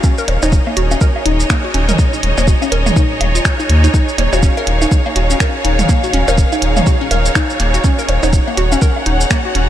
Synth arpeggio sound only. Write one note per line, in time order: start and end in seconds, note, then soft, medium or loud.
0.04 0.13 C#4 medium
0.18 0.21 A#4 loud
0.43 0.47 D#4 medium
0.67 0.69 A#3 medium
0.77 0.80 F#4 medium
0.91 0.97 C#4 medium
1.01 1.05 A#4 loud
1.25 1.32 D#4 medium
1.50 1.54 A#3 medium
1.64 1.67 F#4 medium
1.74 1.83 C#4 medium
1.89 1.91 A#4 loud
2.13 2.17 D#4 medium
2.38 2.40 A#3 medium
2.47 2.51 F#4 medium
2.62 2.68 C#4 medium
2.72 2.75 A#4 loud
2.96 3.02 D#4 medium
3.35 3.38 F4 medium
3.60 3.62 D#4 medium
3.84 3.88 D#4 medium
3.94 4.00 D#4 medium
4.18 4.22 A#3 medium
4.33 4.35 F#4 medium
4.43 4.52 C#4 medium
4.57 4.60 A#4 loud
4.82 4.86 D#4 medium
5.06 5.08 A#3 medium
5.16 5.20 F#4 medium
5.30 5.37 C#4 medium
5.40 5.44 A#4 loud
5.65 5.71 D#4 medium
5.89 5.93 A#3 medium
6.04 6.06 F#4 medium
6.14 6.22 C#4 medium
6.28 6.30 A#4 loud
6.52 6.56 D#4 medium
6.77 6.79 A#3 medium
6.87 6.90 F#4 medium
7.01 7.07 C#4 medium
7.11 7.15 A#4 loud
7.35 7.41 D#4 medium
7.60 7.63 A#3 medium
7.74 7.77 F#4 medium
7.84 7.93 C#4 medium
7.99 8.01 A#4 loud
8.23 8.27 D#4 medium
8.48 8.50 A#3 medium
8.57 8.61 F#4 medium
8.72 8.78 C#4 medium
8.82 8.85 A#4 loud
9.06 9.12 D#4 medium
9.31 9.34 A#3 medium
9.45 9.48 F#4 medium
9.55 9.64 C#4 medium